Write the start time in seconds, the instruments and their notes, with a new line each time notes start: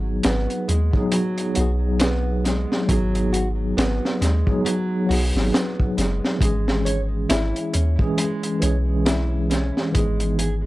Already playing: 808-style bass G#1, tine electric piano F#3 B3 D#4 G#4
0.23 808-style bass G#1, nylon-string guitar B3, snare, closed hi-hat
0.50 closed hi-hat
0.68 808-style bass D#2, nylon-string guitar G#3, closed hi-hat
0.93 tine electric piano F#3 B3 D#4 G#4, kick
1.12 nylon-string guitar F#3, closed hi-hat
1.38 closed hi-hat
1.54 808-style bass B1, tine electric piano F#3 B3, nylon-string guitar F#4, closed hi-hat
1.59 tine electric piano D#4 G#4
2.00 nylon-string guitar B3, snare, closed hi-hat
2.45 nylon-string guitar G#3, snare, closed hi-hat
2.72 snare
2.87 808-style bass G#1, tine electric piano F#3 B3, nylon-string guitar F#3, kick, closed hi-hat
2.91 tine electric piano D#4 G#4
3.15 closed hi-hat
3.33 nylon-string guitar F#4, closed hi-hat
3.77 808-style bass G#1, nylon-string guitar B3, snare, closed hi-hat
4.05 snare
4.21 808-style bass D#2, nylon-string guitar G#3, snare, closed hi-hat
4.46 tine electric piano F#3 B3 D#4 G#4, kick
4.65 nylon-string guitar F#3, closed hi-hat
5.06 808-style bass B1, tine electric piano F#3 B3, nylon-string guitar F#4
5.11 tine electric piano D#4 G#4, open hi-hat
5.35 808-style bass G#1, snare
5.53 nylon-string guitar B3, snare, closed hi-hat
5.80 kick
5.97 808-style bass F#1, nylon-string guitar G#3, snare, closed hi-hat
6.25 snare
6.39 808-style bass G#1, tine electric piano E3 G#3, nylon-string guitar G#3, kick, closed hi-hat
6.43 tine electric piano C#4 G#4
6.68 snare
6.85 nylon-string guitar C#5, closed hi-hat
7.29 808-style bass G#1, nylon-string guitar E4, snare, closed hi-hat
7.56 closed hi-hat
7.73 808-style bass D#2, nylon-string guitar C#4, closed hi-hat
7.99 tine electric piano E3 G#3 C#4 G#4, kick
8.17 nylon-string guitar G#3, closed hi-hat
8.43 closed hi-hat
8.60 808-style bass B1, tine electric piano E3 G#3, nylon-string guitar C#5, closed hi-hat
8.64 tine electric piano C#4 G#4
9.06 nylon-string guitar E4, snare, closed hi-hat
9.50 nylon-string guitar C#4, snare, closed hi-hat
9.77 snare
9.92 808-style bass G#1, tine electric piano E3 B3, nylon-string guitar G#3, kick, closed hi-hat
9.96 tine electric piano D#4 G#4
10.20 closed hi-hat
10.39 nylon-string guitar G#4, closed hi-hat